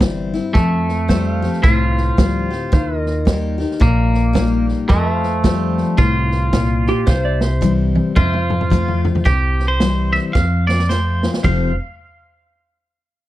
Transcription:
Already playing: G1 G2 C5 E5
0.00 E3 G3 C4 E4, kick, snare, hi-hat pedal
0.34 C4 E4, snare
0.54 F2 A3, kick, snare
0.89 snare
1.08 F3 G3 C4 G4 C5 E5, kick, snare, hi-hat pedal
1.30 F5
1.42 C4 G4, snare
1.53 snare
1.63 C2 A2 F4, kick, snare
1.97 snare
2.17 D2 F3 G3 C4 G4, kick, snare, hi-hat pedal
2.50 C4 G4, snare
2.72 D#2 D#3 C5 F5, kick, snare
2.98 A#4 D#5
3.06 snare
3.25 G3 A#3 D#4 G4, kick, snare, hi-hat pedal
3.58 D#4 G4, snare
3.71 snare
3.80 A#1 A#2 A#3, kick, snare
4.14 snare
4.33 G3 A#3 D#4 G4, kick, snare, hi-hat pedal
4.69 snare
4.89 F2 A3 A#4 D#5, kick, snare
5.14 C5 F5
5.23 snare
5.44 F3 G3 C4 G4, kick, snare, hi-hat pedal
5.77 snare
5.98 C2 A2 F4, kick, snare
6.31 snare
6.53 A#2, kick, snare, hi-hat pedal
6.86 G4, snare
7.07 C2 C3 C5 F5, kick, snare
7.25 D5 E5
7.41 C5, snare
7.61 E3 G3 C4 E4, kick, hi-hat pedal, high tom
7.95 high tom
8.16 F2 F4 C5 E5, kick, mid tom
8.33 mid tom
8.38 F5
8.50 mid tom
8.61 mid tom
8.70 F3 A3 C4 F4, kick, hi-hat pedal, mid tom
8.88 floor tom
9.05 floor tom
9.15 floor tom
9.25 C2 C3 G4, kick, snare
9.60 snare
9.68 C5
9.80 E3 G3 C4 E4, snare, hi-hat pedal
10.13 E5, snare
10.33 F2 F5, kick, snare
10.67 D5, snare
10.79 snare
10.89 F3 A3 C4 F4 C5, snare, hi-hat pedal
11.23 C4 F4, snare
11.34 snare
11.44 F1 F2 C3 F3 A3 C4 F4 C5 F5, kick, floor tom, splash

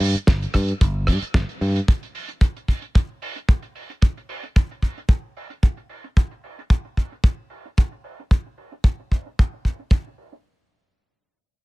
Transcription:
0.00 G2, open hi-hat
0.15 muted picked electric bass stroke, closed hi-hat
0.27 G1, kick, snare, closed hi-hat
0.42 closed hi-hat
0.54 G2, kick, cross-stick, open hi-hat
0.68 closed hi-hat
0.81 G1, kick, closed hi-hat
1.07 G2, kick, cross-stick, open hi-hat
1.22 muted picked electric bass stroke, closed hi-hat
1.34 G1, kick, snare, closed hi-hat
1.49 closed hi-hat
1.61 G2, open hi-hat
1.76 closed hi-hat
1.88 kick, closed hi-hat
2.03 closed hi-hat
2.15 open hi-hat
2.29 closed hi-hat
2.41 kick, closed hi-hat
2.57 closed hi-hat
2.68 kick, open hi-hat
2.82 closed hi-hat
2.95 kick, closed hi-hat
3.22 open hi-hat
3.36 closed hi-hat
3.48 kick, closed hi-hat
3.62 closed hi-hat
3.75 open hi-hat
3.90 closed hi-hat
4.02 kick, closed hi-hat
4.17 closed hi-hat
4.29 open hi-hat
4.43 closed hi-hat
4.56 kick, closed hi-hat
4.71 closed hi-hat
4.82 kick, open hi-hat
4.98 closed hi-hat
5.09 kick, closed hi-hat
5.37 open hi-hat
5.50 closed hi-hat
5.63 kick, closed hi-hat
5.77 closed hi-hat
5.89 open hi-hat
6.04 closed hi-hat
6.17 kick, closed hi-hat
6.31 closed hi-hat
6.44 open hi-hat
6.59 closed hi-hat
6.70 kick, closed hi-hat
6.85 closed hi-hat
6.97 kick, open hi-hat
7.12 closed hi-hat
7.24 kick, closed hi-hat
7.50 open hi-hat
7.66 closed hi-hat
7.78 kick, closed hi-hat
7.92 closed hi-hat
8.04 open hi-hat
8.20 closed hi-hat
8.31 kick, closed hi-hat
8.46 closed hi-hat
8.58 open hi-hat
8.72 closed hi-hat
8.84 kick, closed hi-hat
8.99 closed hi-hat
9.11 kick, open hi-hat
9.26 closed hi-hat
9.39 kick, closed hi-hat
9.53 closed hi-hat
9.65 kick, open hi-hat
9.79 closed hi-hat
9.91 kick, closed hi-hat
10.07 closed hi-hat
10.18 open hi-hat
10.33 closed hi-hat

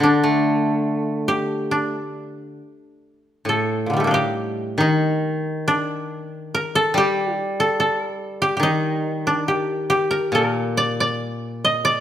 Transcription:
0.00 D3 D4
0.23 A3
1.28 G4
1.71 D4
3.45 A2 A4
3.86 A#2 D3
3.93 D#3 G3
4.00 A3
4.04 A#3 D4
4.11 D#4 G4
4.78 D#3 D#4
5.68 D4
6.54 A#4
6.75 A4
6.94 G3 G4
7.37 D#4
7.60 A4
7.80 A4
8.42 G4
8.57 D#3 G4
8.63 D#4
9.27 D4
9.48 G4
9.90 G4
10.11 A#4
10.32 A#2 A#4
10.77 D5
11.00 D5
11.65 D#5
11.85 D5

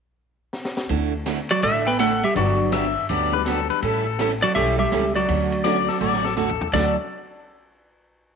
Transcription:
0.53 snare
0.65 snare
0.77 snare
0.89 D2 D3 A3 D4 E4 A4, ride
1.26 D3 A3 D4 E4 A4, snare, hi-hat pedal, ride
1.50 F#3 F#4 D5, ride
1.62 A1 D3 A3 D4 E4 A4 E5, ride
1.87 B3 B4 G5
1.99 D3 A3 D4 E4 A4 F#5, snare, hi-hat pedal, ride
2.23 G3 G4 E5, ride
2.35 G1 D3 F#3 B3 D4 F#4 G4 D5, ride
2.72 D3 F#3 B3 D4 G4 E5, snare, hi-hat pedal, ride
3.09 D2 D3 F#3 B3 D4 G4 D5, ride
3.32 F#3 G3 B3 D4 F#4 B4
3.45 D3 F#3 B3 D4 G4 A4, snare, hi-hat pedal, ride
3.70 B4, ride
3.82 A1 E3 G3 C#4 E4 A4, ride
4.07 A4
4.19 E3 G3 C#4 E4 A4, snare, hi-hat pedal, ride
4.42 F#3 F#4 D5, ride
4.54 B1 E3 G3 C#4 E4 G4 A4 E5, ride
4.79 G3 G4 E5
4.92 C#2 E3 G3 C#4 E4 A4, snare, hi-hat pedal, ride
5.15 F#3 F#4 D5, ride
5.28 D2 D3 F#3 A3 C#4 F#4, ride
5.52 ride
5.64 D3 F#3 A3 C#4 D4 F#4 D5, snare, hi-hat pedal, ride
5.89 A4, snare
6.00 A1 D3 F#3 A3 C#4 F#4 D5
6.13 snare
6.25 A4, snare
6.37 D3 F#3 A3 C#4 F#4 A4, floor tom, hi-hat pedal
6.49 floor tom
6.61 floor tom
6.73 D2 D3 F#3 A3 C#4 D4 F#4 A4 D5, kick, snare, crash

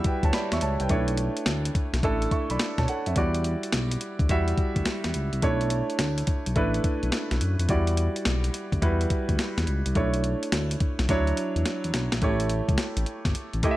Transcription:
Already playing: G3 E4 F#4 D5 E5
0.04 B4 G5, kick, closed hi-hat
0.23 D2 C#5 A5, kick, closed hi-hat
0.33 D5 B5, snare, closed hi-hat
0.52 E2 E5 C#6, snare, closed hi-hat
0.61 C#2 C#5 A5, closed hi-hat
0.80 C2 B4 G5, closed hi-hat
0.89 B1 A3 D4 E4 C#5, kick, closed hi-hat
1.08 closed hi-hat
1.17 closed hi-hat
1.37 closed hi-hat
1.46 D2, snare, closed hi-hat
1.65 closed hi-hat
1.75 kick, closed hi-hat
1.93 B1, snare, closed hi-hat
2.03 A1 A3 D4 E4 A4, kick, closed hi-hat
2.22 closed hi-hat
2.31 E5 C#6, kick, closed hi-hat
2.50 B1 D5 B5, closed hi-hat
2.59 snare, closed hi-hat
2.78 B2 C#5 A5, kick, snare, closed hi-hat
2.88 A4 F#5, closed hi-hat
3.06 F2 E5, closed hi-hat
3.16 E2 G3 E4 F#4 D5, kick, closed hi-hat
3.34 closed hi-hat
3.44 closed hi-hat
3.63 closed hi-hat
3.72 B1, snare, closed hi-hat
3.91 closed hi-hat
4.01 closed hi-hat
4.19 D2, kick, closed hi-hat
4.29 E2 G3 E4 F#4 E5, kick, closed hi-hat
4.48 closed hi-hat
4.58 kick, closed hi-hat
4.76 D2, kick, closed hi-hat
4.85 snare, closed hi-hat
5.04 E2, snare, closed hi-hat
5.14 C#2, closed hi-hat
5.33 C2, closed hi-hat
5.42 B1 A3 D4 E4 C#5, kick, closed hi-hat
5.61 closed hi-hat
5.70 closed hi-hat
5.90 closed hi-hat
5.99 D2, snare, closed hi-hat
6.18 closed hi-hat
6.27 kick, closed hi-hat
6.46 B1, closed hi-hat
6.56 A1 A3 D4 E4 B4, kick, closed hi-hat
6.74 closed hi-hat
6.84 kick, closed hi-hat
7.03 B1, closed hi-hat
7.12 snare, closed hi-hat
7.31 B1, snare, closed hi-hat
7.41 F#2, closed hi-hat
7.59 F2, closed hi-hat
7.69 E2 G3 E4 F#4 D5, kick, closed hi-hat
7.87 closed hi-hat
7.97 closed hi-hat
8.16 closed hi-hat
8.25 B1, snare, closed hi-hat
8.44 closed hi-hat
8.54 closed hi-hat
8.72 D2, kick, closed hi-hat
8.82 E2 G3 E4 F#4 B4, kick, closed hi-hat
9.01 closed hi-hat
9.10 kick, closed hi-hat
9.29 D2, kick, closed hi-hat
9.39 snare, closed hi-hat
9.57 E2, snare, closed hi-hat
9.67 C#2, closed hi-hat
9.86 C2, closed hi-hat
9.95 B1 A3 D4 E4 C#5, kick, closed hi-hat
10.14 closed hi-hat
10.24 closed hi-hat
10.43 closed hi-hat
10.52 D2, snare, closed hi-hat
10.71 closed hi-hat
10.80 kick, closed hi-hat
10.99 B1, snare, closed hi-hat
11.09 D2 F#3 D4 E4 C#5, kick, snare, closed hi-hat
11.27 closed hi-hat
11.37 closed hi-hat
11.56 E2, closed hi-hat
11.66 snare, closed hi-hat
11.84 E2, closed hi-hat
11.94 B1, snare, closed hi-hat
12.12 A#1, snare, closed hi-hat
12.22 A1 A3 E4 G4 C#5, kick, closed hi-hat
12.40 closed hi-hat
12.50 closed hi-hat
12.69 C#2, kick, closed hi-hat
12.78 snare, closed hi-hat
12.97 A1, closed hi-hat
13.06 closed hi-hat
13.25 G1, kick, snare, closed hi-hat
13.35 closed hi-hat
13.53 A1, closed hi-hat
13.63 A3 E4 G4 D#5, kick, closed hi-hat
13.71 E5

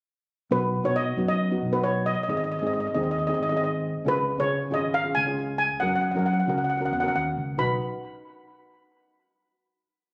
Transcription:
0.51 B1 B3 D#4 F#4 B4
0.83 B2 B3 D#4 F#4 C#5
0.96 D#5
1.17 F#2 B3 D#4 F#4
1.28 D#5
1.50 B3 D#4 F#4
1.61 B1
1.72 B3 D#4 F#4 B4
1.83 C#5
2.06 D#5
2.15 D#5
2.23 D#5
2.28 G#1 C4 D#4 G#4 D#5
2.37 D#5
2.44 D#5
2.52 D#5
2.59 G#2 C4 D#4 G#4 D#5
2.67 D#5
2.73 D#5
2.80 D#5
2.87 D#5
2.95 D#2 C4 D#4 G#4 D#5
3.03 D#5
3.11 D#5
3.19 D#5
3.27 C4 D#4 G#4 D#5
3.34 D#5
3.40 G#1 D#5
3.49 C4 D#4 G#4 D#5
3.57 D#5
3.64 D#5
4.05 C#2 C#4 F4 G#4 B4
4.38 C#3 C#4 F4 G#4 C#5
4.71 G#1 C#4 F4 G#4 D#5
4.94 F5
5.04 C#4 F4 G#4
5.15 C#2 G#5
5.26 C#4 F4 G#4
5.58 G#5
5.80 F#2 C#4 F#4 A#4 F#5
5.88 F#5
5.96 F#5
6.01 F#5
6.11 C#4 F#4 F#5
6.16 F#3 A#4 F#5
6.26 F#5
6.33 F#5
6.40 F#5
6.47 C#2 C#4 F#4 A#4 F#5
6.58 F#5
6.64 F#5
6.70 F#5
6.78 C#4 F#4 F#5
6.82 A#4 F#5
6.91 E2 F#5
7.00 C#4 F#4 A#4 F#5
7.08 F#5
7.14 D#2 F#5
7.36 C#2
7.58 B1 D#4 F#4 B4 B5

